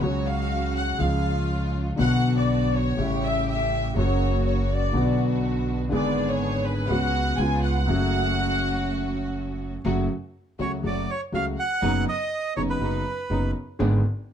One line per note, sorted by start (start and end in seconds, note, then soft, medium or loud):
0.01 0.95 C#2 medium
0.01 0.95 C#3 medium
0.01 0.95 F#3 medium
0.01 0.95 G#3 medium
0.01 0.96 G#3 soft
0.01 0.95 C#4 medium
0.01 0.95 F#4 medium
0.01 0.96 F#4 medium
0.01 0.26 C#5 medium
0.27 0.76 F5 medium
0.76 0.98 F#5 medium
0.98 1.94 C#2 medium
0.98 1.94 C#3 medium
0.98 1.94 F3 soft
0.98 1.94 G#3 medium
0.98 1.94 G#3 soft
0.98 1.94 C#4 soft
0.98 1.94 F4 medium
0.98 1.95 F4 soft
0.98 1.75 F5 medium
1.96 2.92 B1 medium
1.96 2.93 B1 medium
1.96 2.92 B2 medium
1.96 2.91 D3 medium
1.96 2.92 F#3 medium
1.96 2.92 B3 medium
1.96 2.93 B3 soft
1.96 2.92 D4 medium
1.96 2.93 F#4 medium
1.96 2.34 F#5 loud
2.00 2.93 F#4 medium
2.38 2.74 D5 medium
2.75 3.23 C#5 medium
2.97 3.91 A1 medium
2.97 3.91 A2 medium
2.97 3.90 C#3 medium
2.97 3.91 G3 soft
2.97 3.91 A3 medium
2.97 3.91 A3 soft
2.97 3.91 C#4 medium
2.97 3.92 E4 medium
2.97 3.91 G4 medium
3.24 3.48 E5 medium
3.49 3.94 E5 medium
3.94 4.89 F#1 medium
3.94 4.89 F#2 medium
3.94 4.88 C#3 medium
3.94 4.89 F#3 medium
3.94 4.89 A#3 medium
3.94 4.90 A#3 medium
3.94 4.89 C#4 medium
3.94 4.89 F#4 medium
3.94 4.45 C#5 medium
3.98 4.90 F#4 medium
4.46 4.68 C#5 medium
4.71 5.19 D5 medium
4.93 5.87 B1 medium
4.93 5.87 B2 medium
4.93 5.86 D3 medium
4.93 5.87 F#3 medium
4.93 5.87 B3 medium
4.93 5.88 B3 soft
4.93 5.87 D4 medium
4.93 5.87 F#4 medium
4.97 5.88 F#4 medium
5.89 6.85 G#1 medium
5.89 6.85 G#2 medium
5.89 6.84 D3 medium
5.89 6.84 G#3 medium
5.89 6.84 B3 medium
5.89 6.85 B3 medium
5.89 6.85 D4 medium
5.89 6.85 G#4 medium
5.89 6.27 D5 medium
6.28 6.65 C#5 medium
6.65 6.90 B4 medium
6.89 7.36 C#2 medium
6.89 7.35 C#3 medium
6.89 7.36 G#3 medium
6.89 7.36 B3 medium
6.89 7.36 C#4 medium
6.89 7.36 F#4 medium
6.89 7.37 F#4 medium
6.89 7.38 F#5 loud
7.37 7.85 C#2 medium
7.37 7.84 C#3 medium
7.37 7.85 G#3 soft
7.37 7.85 B3 medium
7.37 7.86 B3 medium
7.37 7.85 C#4 medium
7.37 7.85 F4 medium
7.37 7.63 G#5 loud
7.41 7.86 F4 medium
7.63 9.31 F#5 loud
7.86 9.75 F#1 medium
7.86 9.75 F#2 medium
7.86 9.74 C#3 medium
7.86 9.75 F#3 medium
7.86 9.75 A3 medium
7.86 9.76 A3 medium
7.86 9.75 C#4 medium
7.86 9.75 F#4 medium
7.90 9.76 F#4 medium
9.84 10.06 F#1 medium
9.84 10.06 F#2 medium
9.84 10.06 C#3 medium
9.84 10.06 F#3 medium
9.84 10.05 A3 medium
9.84 10.06 A3 medium
9.84 10.06 C#4 medium
9.84 10.06 F#4 medium
10.59 10.80 C#2 soft
10.59 10.80 C#2 medium
10.59 10.80 C#3 soft
10.59 10.80 F#3 soft
10.59 10.80 A3 soft
10.59 10.80 C#4 soft
10.59 10.80 F#4 medium
10.59 10.80 F#4 soft
10.59 10.71 C#5 medium
10.59 10.72 C#5 medium
10.83 11.05 F#1 medium
10.83 11.04 F#2 soft
10.83 11.04 C#3 soft
10.83 11.04 F#3 soft
10.83 11.04 A3 soft
10.83 11.04 C#4 soft
10.83 11.04 F#4 soft
10.83 11.07 D5 medium
10.83 11.11 D5 medium
11.10 11.21 C#5 medium
11.32 11.53 C#2 medium
11.32 11.54 C#2 soft
11.32 11.54 C#3 soft
11.32 11.53 F#3 soft
11.32 11.54 A3 soft
11.32 11.54 C#4 soft
11.32 11.54 F#4 soft
11.32 11.46 F5 medium
11.59 12.04 F#5 medium
11.59 12.05 F#5 loud
11.82 12.03 F#1 medium
11.82 12.03 F#2 medium
11.82 12.03 C#3 medium
11.82 12.03 F#3 medium
11.82 12.03 B3 medium
11.82 12.03 C#4 medium
11.82 12.03 D#4 medium
12.08 12.53 D#5 medium
12.08 12.54 D#5 loud
12.56 12.77 F#1 medium
12.56 12.77 F#2 soft
12.56 12.77 C#3 soft
12.56 12.77 F#3 medium
12.56 12.77 B3 soft
12.56 12.77 C#4 soft
12.56 12.77 D#4 soft
12.56 12.62 C#5 medium
12.69 13.51 B4 medium
12.80 13.01 F#1 medium
12.80 13.01 F#2 soft
12.80 13.01 C#3 soft
12.80 13.02 F#3 soft
12.80 13.01 B3 soft
12.80 13.02 B3 soft
12.80 13.01 C#4 soft
12.80 13.01 D#4 soft
12.80 13.02 D#4 medium
13.30 13.51 F#1 medium
13.30 13.51 F#2 medium
13.30 13.51 C#3 soft
13.30 13.51 F#3 soft
13.30 13.51 B3 soft
13.30 13.51 C#4 soft
13.30 13.51 D#4 soft
13.79 14.00 G#1 medium
13.79 14.00 G#2 medium
13.79 14.00 D3 medium
13.79 14.00 G#3 medium
13.79 14.00 B3 medium
13.79 14.00 D4 medium
13.79 14.00 G#4 medium